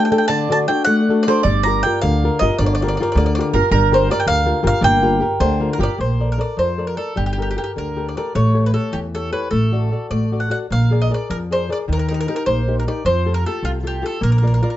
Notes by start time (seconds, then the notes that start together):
Already playing: A3 D4 G4 A4
0.05 G5
0.11 D4 G4 A4 G5
0.18 G5
0.28 D3 D5 A5
0.49 D4 F#4 A4 A5
0.68 D4 F#4 A4 G5
0.84 A3 F#5
1.09 D4 F#4 A4
1.23 D5
1.28 D4 F#4 A4 C5
1.43 G1 G3 D5
1.63 F4 G4 A#5
1.67 A#4
1.83 F4 G4 A#4 G5
2.02 D2 D3 F5
2.24 F4 G4 A#4
2.39 G1 F4 G4 A#4 D#5
2.59 G1 D3 D5
2.66 D5
2.75 D5
2.82 F4 G4 A#4 D5
2.88 D5
2.97 F4 D5
3.01 G4 A#4 D5
3.12 D2 D5
3.17 D3 D5
3.26 D5
3.35 F4 G4 A#4 D5
3.41 D5
3.54 G1 F4 G4 A#4
3.71 G1 G3 A#4
3.91 F4 G4 A#4 C5
4.10 F4 G4 A#4 D5
4.20 G5
4.27 D2 D3 F5
4.46 F4 G4 A#4
4.63 G1 F4 G4 A#4
4.67 F5
4.81 G1 A#3 G5
5.03 F4 G4 A#4
5.20 F4 G4 A#4
5.40 D2 D3 C5
5.60 F4 G4 A#4
5.73 A#4
5.78 G1 F4 G4 A#4
5.83 D5
5.99 A#1 A#3 C5
6.20 A4 A#4 D5
6.32 A#4
6.38 A4 A#4 D5
6.57 F2 F3 C5
6.78 A4 A#4 D5
6.87 A#4
6.97 A4 A#4 D5
7.16 G1 G3 G4
7.26 G4
7.33 G4
7.38 G4 A4 A#4
7.42 G4
7.51 G4
7.57 G4 A4 A#4
7.64 G4
7.76 D2 D3 A#4
7.97 G4 A4 A#4
8.09 D5
8.17 G4 A4 A#4 D5
8.35 A1 A3 C#5
8.55 G4 A4 C#5
8.66 B4
8.74 G4 A4 C#5
8.92 E2 E3 G4
9.15 G4 A4 C#5
9.32 G4 A4 B4 C#5
9.51 A1 A3 A4
9.72 F#4 A4 D5
9.92 F#4 A4 D5
10.10 A1 A3 D5
10.32 F#4 A4 D5
10.40 F#5
10.50 F#4 A4 D5 F#5
10.70 A#1 A#3 F5
10.91 G#4 A#4 D5
11.02 D#5
11.10 G#4 A#4 D5
11.30 F2 F3 A#4
11.51 G#4 A#4 C5 D5
11.69 G#4 A#4 D5
11.88 D#2 D#3
11.93 A#4
11.99 A#4
12.09 D#4 G4 A#4
12.14 A#4
12.21 A#4
12.28 D#4 G4 A#4
12.36 A#4
12.46 A#1 A#3 C5
12.68 D#4 G4 A#4
12.80 A#4
12.87 D#4 G4 A#4 D5
13.05 F2 F3 C5
13.26 F4 G4 A4
13.34 A#4
13.46 F4 G4 A4
13.63 C2 C3 F4
13.84 F4 G4 A4
14.02 F4 G4 A4
14.21 A#1 A#3 A#4
14.32 A#4
14.38 A#4
14.43 F4 A#4 D5
14.47 A#4
14.54 A#4
14.63 F4 A#4 D5
14.70 A#4